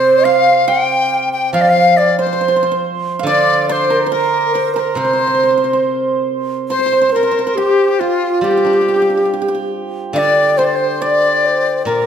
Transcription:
Already playing: guzheng C3, hammered dulcimer A#4 C5 D5, dizi C5, xiao C5
0.24 dizi F5, xiao F5, hammered dulcimer F5
0.68 hammered dulcimer G5, dizi G5, xiao G5
1.33 dizi G5, xiao G5
1.53 guzheng F3, dizi F5, hammered dulcimer F5, xiao F5
1.61 dizi D5
1.69 dizi F5
1.97 dizi D5, xiao D5
2.19 hammered dulcimer C5, xiao C5, dizi C5
2.26 hammered dulcimer C5
2.33 hammered dulcimer C5
2.41 hammered dulcimer C5
2.48 hammered dulcimer C5
2.56 hammered dulcimer C5
2.63 hammered dulcimer C5
2.72 hammered dulcimer C5
3.19 guzheng D3, hammered dulcimer F5
3.27 dizi D5, hammered dulcimer D5, xiao D5
3.68 xiao C5, hammered dulcimer C5, dizi C5 D5
3.90 xiao A#4, hammered dulcimer A#4
4.02 xiao C5
4.06 xiao A#4, hammered dulcimer C5
4.11 dizi A#4, hammered dulcimer A#4
4.54 xiao C5, hammered dulcimer C5
4.74 xiao A#4, hammered dulcimer A#4, dizi C5
4.80 dizi A#4
4.95 guzheng C3, xiao C5, dizi C5, hammered dulcimer C5
5.05 hammered dulcimer C5
5.13 hammered dulcimer C5
5.19 hammered dulcimer C5
5.27 hammered dulcimer C5
5.35 hammered dulcimer C5
5.43 hammered dulcimer C5
5.50 hammered dulcimer C5
5.58 hammered dulcimer C5
5.64 hammered dulcimer C5
5.73 hammered dulcimer C5
6.68 xiao C5, dizi C5, hammered dulcimer C5
6.79 hammered dulcimer C5
6.86 hammered dulcimer C5
6.92 hammered dulcimer C5
7.01 hammered dulcimer C5
7.09 xiao A#4, hammered dulcimer C5
7.14 dizi A#4, hammered dulcimer C5
7.23 hammered dulcimer C5
7.31 hammered dulcimer C5
7.39 hammered dulcimer C5
7.47 hammered dulcimer C5
7.55 xiao G4, dizi G4, hammered dulcimer G4
7.99 xiao F4, dizi F4, hammered dulcimer F4
8.41 guzheng G3, xiao G4, dizi G4, hammered dulcimer G4
8.51 hammered dulcimer G4
8.57 hammered dulcimer G4
8.65 guzheng D4, hammered dulcimer G4
8.73 hammered dulcimer G4
8.81 hammered dulcimer G4
8.88 hammered dulcimer G4
8.96 hammered dulcimer G4
9.02 hammered dulcimer G4
9.10 hammered dulcimer G4
9.17 hammered dulcimer G4
9.25 hammered dulcimer G4
9.34 hammered dulcimer G4
9.42 hammered dulcimer G4
9.48 hammered dulcimer G4
9.55 hammered dulcimer G4
10.13 guzheng D3, xiao D5, hammered dulcimer D5, dizi F5
10.18 dizi D5
10.58 xiao C5, dizi C5, hammered dulcimer C5
10.65 dizi D5
10.72 dizi C5 D5
11.01 xiao D5, hammered dulcimer D5, dizi D5
11.45 xiao C5
11.85 guzheng A#2, dizi A#4, hammered dulcimer A#4, xiao A#4

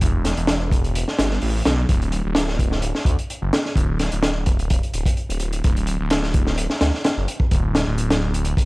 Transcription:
0.01 detuned saw bass E1, kick, closed hi-hat
0.25 snare, closed hi-hat
0.37 detuned saw bass E1, closed hi-hat
0.47 snare, closed hi-hat
0.72 kick, closed hi-hat
0.84 closed hi-hat
0.95 closed hi-hat
1.08 snare
1.19 detuned saw bass G1, snare, closed hi-hat
1.31 snare
1.41 detuned saw bass A1, open hi-hat
1.65 detuned saw bass B1, snare, closed hi-hat
1.89 detuned saw bass D1, kick, closed hi-hat
2.02 closed hi-hat
2.12 closed hi-hat
2.25 detuned saw bass D1
2.35 snare, closed hi-hat
2.48 snare
2.59 kick, closed hi-hat
2.72 snare
2.82 closed hi-hat
2.95 snare
3.05 detuned saw bass D2, kick, closed hi-hat
3.19 closed hi-hat
3.30 closed hi-hat
3.42 detuned saw bass F#1
3.53 snare, closed hi-hat
3.65 snare
3.76 detuned saw bass D1, kick, closed hi-hat
3.99 snare, closed hi-hat
4.12 detuned saw bass D1, closed hi-hat
4.23 snare, closed hi-hat
4.46 kick, closed hi-hat
4.59 closed hi-hat
4.70 kick, closed hi-hat
4.83 closed hi-hat
4.93 detuned saw bass D1, closed hi-hat
5.06 kick, closed hi-hat
5.17 closed hi-hat
5.29 detuned saw bass D1, closed hi-hat
5.40 closed hi-hat
5.52 closed hi-hat
5.64 detuned saw bass D1, kick, closed hi-hat
5.77 closed hi-hat
5.87 closed hi-hat
6.00 detuned saw bass D1
6.10 snare, closed hi-hat
6.23 snare
6.34 kick, closed hi-hat
6.47 snare
6.58 closed hi-hat
6.70 snare
6.81 detuned saw bass D2, snare, closed hi-hat
6.94 snare
7.04 snare, closed hi-hat
7.17 detuned saw bass F#1
7.28 closed hi-hat
7.40 kick
7.51 detuned saw bass D1, kick, closed hi-hat
7.75 snare, closed hi-hat
7.87 detuned saw bass D1
7.98 closed hi-hat
8.10 snare, closed hi-hat
8.34 closed hi-hat
8.45 closed hi-hat
8.57 kick, closed hi-hat

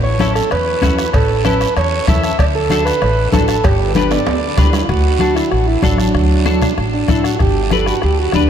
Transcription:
Already playing: upright bass A1
0.04 transistor combo organ C#5
0.19 clean electric guitar C#4 E4 A4, bombo rim, cowbell, high conga, short guiro
0.35 transistor combo organ A4, bombo rim, short guiro
0.51 upright bass E2, transistor combo organ B4, bombo rim, cowbell, high conga, long guiro
0.82 upright bass E2, clean electric guitar C#4 E4 F#4, bombo low, bombo rim, cowbell, high conga, low timbale, short guiro
0.98 bombo rim, short guiro
1.13 upright bass A1, transistor combo organ A4, bombo low, bombo rim, cowbell, high conga, long guiro
1.45 clean electric guitar C#4 E4 A4, transistor combo organ B4, bombo rim, cowbell, high conga, short guiro
1.61 bombo rim, short guiro
1.77 upright bass E2, transistor combo organ C#5, bombo rim, cowbell, high conga, long guiro
2.08 upright bass E2, clean electric guitar C#4 E4 A4, transistor combo organ E5, bombo low, bombo rim, cowbell, high conga, low conga, low timbale, short guiro
2.23 bombo rim, short guiro
2.39 upright bass D2, transistor combo organ D5, bombo low, bombo rim, cowbell, high conga, long guiro
2.55 transistor combo organ A4
2.70 clean electric guitar D4 F#4 A4, bombo rim, cowbell, high conga, short guiro
2.85 transistor combo organ B4, bombo rim, short guiro
3.02 upright bass A1, bombo rim, cowbell, high conga, long guiro
3.32 upright bass A1, clean electric guitar D4 F#4 A4, transistor combo organ A4, bombo low, bombo rim, cowbell, high conga, low timbale, short guiro
3.48 bombo rim, short guiro
3.64 upright bass G1, transistor combo organ G4, bombo low, bombo rim, cowbell, high conga, long guiro
3.95 clean electric guitar D4 G4 B4, transistor combo organ B4, bombo rim, cowbell, high conga, short guiro
4.11 transistor combo organ D5, bombo rim, high timbale, short guiro
4.26 upright bass D2, bombo rim, cowbell, high conga, high timbale, long guiro
4.57 upright bass D2, clean electric guitar D4 G4 B4, bombo low, bombo rim, cowbell, high conga, low conga, low timbale, short guiro
4.73 bombo rim, low timbale, short guiro
4.84 transistor combo organ F4
4.89 upright bass D2, transistor combo organ F#4, bombo low, bombo rim, high conga, long guiro
5.19 clean electric guitar D4 F#4 A4, bombo rim, high conga, short guiro
5.35 transistor combo organ E4, bombo rim, short guiro
5.51 upright bass A1, transistor combo organ F#4, bombo rim, high conga, long guiro
5.68 transistor combo organ E4
5.82 upright bass A1, transistor combo organ F#3 D4, clean electric guitar D4 F#4 A4, bombo low, bombo rim, high conga, short guiro
5.98 bombo rim, short guiro
6.15 upright bass D2, bombo low, bombo rim, long guiro
6.46 clean electric guitar D4 F#4 A4, bombo rim, high conga, short guiro
6.62 bombo rim, low conga, short guiro
6.78 upright bass A1, bombo rim, high conga, long guiro
6.94 transistor combo organ D4
7.08 upright bass A1, clean electric guitar D4 F#4 A4, transistor combo organ E4, bombo low, bombo rim, high conga, low conga, short guiro
7.24 transistor combo organ F#4, bombo rim, short guiro
7.36 transistor combo organ F#4, bombo low, bombo rim
7.40 upright bass G1, transistor combo organ G4, high conga, long guiro
7.71 clean electric guitar D4 G4 B4, transistor combo organ A4, bombo rim, high conga, short guiro
7.86 transistor combo organ F#4, bombo rim, short guiro
8.02 upright bass D2, transistor combo organ G4, bombo rim, high conga, long guiro
8.20 transistor combo organ F#4
8.32 upright bass D2, clean electric guitar D4 G4 B4, bombo low, bombo rim, high conga, short guiro
8.37 transistor combo organ D4

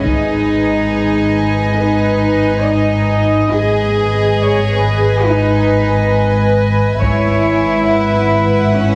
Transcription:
Already playing: viola section G#4
0.05 double bass section G#1, cello section D#4, violin section B4 D#5 G#5, taiko
0.92 viola section G#4
1.79 cello section D#4, viola section B4
2.67 viola section D#5
3.53 double bass section G#1, cello section G#4, violin section B4 D#5 G#5
4.41 viola section C#5
4.84 viola section B4
5.27 cello section D#4
7.00 double bass section G#1, cello section E4, violin section B4 E5, viola section C#5, taiko
7.88 viola section B4, violin section F#5
8.75 cello section C#4, viola section E4

